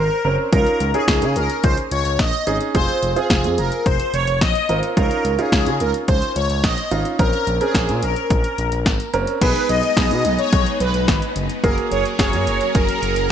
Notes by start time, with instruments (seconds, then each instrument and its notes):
Already playing: analog polysynth A#4
0.25 analog synth bass F#1, grand piano C4 C#4 A#4
0.53 analog synth bass C#2, grand piano C#4 D#4 F4, analog polysynth A#4, kick, closed hi-hat
0.67 closed hi-hat
0.80 analog synth bass C#2, closed hi-hat
0.94 grand piano C#4 D#4 G#4, analog polysynth G#4, closed hi-hat
1.08 analog synth bass C#2, analog polysynth G#4, kick, snare, closed hi-hat
1.22 analog synth bass C#3, closed hi-hat
1.36 analog synth bass C#2, analog polysynth A#4, closed hi-hat
1.50 closed hi-hat
1.64 analog synth bass C#2, analog polysynth C5, kick, closed hi-hat
1.77 closed hi-hat
1.91 analog synth bass C#2, analog polysynth C#5, closed hi-hat
2.05 analog synth bass C#2, closed hi-hat
2.19 analog synth bass A#1, analog polysynth D#5, kick, snare, closed hi-hat
2.33 closed hi-hat
2.47 analog synth bass G#1, grand piano C#4 D#4 G#4, closed hi-hat
2.61 closed hi-hat
2.75 analog synth bass F1, grand piano C4 F4 G#4, analog polysynth C5, kick, closed hi-hat
2.89 closed hi-hat
3.02 analog synth bass F1, closed hi-hat
3.16 grand piano C4 F4 G#4, analog polysynth G#4, closed hi-hat
3.30 analog synth bass F1, analog polysynth G#4, kick, snare, closed hi-hat
3.44 analog synth bass F2, closed hi-hat
3.58 analog synth bass F1, analog polysynth A#4, closed hi-hat
3.72 closed hi-hat
3.86 analog synth bass F1, analog polysynth C5, kick, closed hi-hat
4.00 closed hi-hat
4.14 analog synth bass F1, analog polysynth C#5, closed hi-hat
4.27 analog synth bass F1, closed hi-hat
4.41 analog synth bass A#1, analog polysynth D#5, kick, snare, closed hi-hat
4.55 closed hi-hat
4.69 analog synth bass G#1, grand piano C4 F4 A#4, closed hi-hat
4.83 closed hi-hat
4.97 analog synth bass C#2, grand piano C#4 D#4 F4, analog polysynth A#4, kick, closed hi-hat
5.11 closed hi-hat
5.25 analog synth bass C#2, closed hi-hat
5.39 grand piano C#4 D#4 F4, analog polysynth G#4, closed hi-hat
5.52 analog synth bass C#2, analog polysynth G#4, kick, snare, closed hi-hat
5.66 analog synth bass C#3, closed hi-hat
5.80 analog synth bass C#2, analog polysynth A#4, closed hi-hat
5.94 closed hi-hat
6.08 analog synth bass C#2, analog polysynth C5, kick, closed hi-hat
6.22 closed hi-hat
6.36 analog synth bass C#2, analog polysynth C#5, closed hi-hat
6.50 analog synth bass C#2, closed hi-hat
6.64 analog synth bass A#1, analog polysynth D#5, kick, snare, closed hi-hat
6.78 closed hi-hat
6.91 analog synth bass G#1, grand piano C#4 D#4 F4, closed hi-hat
7.05 closed hi-hat
7.19 analog synth bass A#1, grand piano C4 C#4 A#4, analog polysynth A#4, kick, closed hi-hat
7.33 closed hi-hat
7.47 analog synth bass A#1, closed hi-hat
7.61 grand piano C4 C#4 A#4, analog polysynth G#4, closed hi-hat
7.75 analog synth bass A#1, kick, snare, closed hi-hat
7.89 analog synth bass A#2, closed hi-hat
8.03 analog synth bass A#1, analog polysynth A#4, closed hi-hat
8.16 closed hi-hat
8.30 analog synth bass A#1, kick, closed hi-hat
8.44 closed hi-hat
8.58 analog synth bass A#1, closed hi-hat
8.72 analog synth bass A#1, closed hi-hat
8.86 analog synth bass G#1, kick, snare, closed hi-hat
9.00 closed hi-hat
9.14 analog synth bass F#1, grand piano C4 C#4 A#4, closed hi-hat
9.27 closed hi-hat
9.41 analog synth bass B1, string machine G#3 B3 D#4, grand piano B3 D#4 G#4, analog polysynth B4, kick, closed hi-hat, crash
9.55 closed hi-hat
9.69 analog synth bass B1, analog polysynth D#5, closed hi-hat
9.83 closed hi-hat
9.97 analog synth bass B1, grand piano B3 D#4 G#4, analog polysynth D#5, kick, snare, closed hi-hat
10.11 analog synth bass B2, closed hi-hat
10.25 analog synth bass B1, closed hi-hat
10.39 analog polysynth C#5, closed hi-hat
10.53 analog synth bass B1, kick, closed hi-hat
10.66 closed hi-hat
10.80 analog synth bass B1, analog polysynth B4, closed hi-hat
10.94 analog synth bass B1, closed hi-hat
11.08 analog synth bass G#1, kick, snare, closed hi-hat
11.22 closed hi-hat
11.36 analog synth bass F#1, closed hi-hat
11.50 closed hi-hat
11.64 analog synth bass F#1, string machine F#3 C#4 G#4 A#4, grand piano A#3 F#4 G#4, analog polysynth A#4, kick, closed hi-hat
11.78 closed hi-hat
11.91 analog synth bass F#1, analog polysynth C#5, closed hi-hat
12.05 closed hi-hat
12.19 analog synth bass F#1, grand piano A#3 F#4 G#4, analog polysynth C#5, kick, snare, closed hi-hat
12.33 analog synth bass F#2, closed hi-hat
12.47 analog synth bass F#1, closed hi-hat
12.61 closed hi-hat
12.75 analog synth bass F#1, analog polysynth A#4, kick, closed hi-hat
12.89 closed hi-hat
13.03 analog synth bass F#1, closed hi-hat
13.16 analog synth bass F#1, closed hi-hat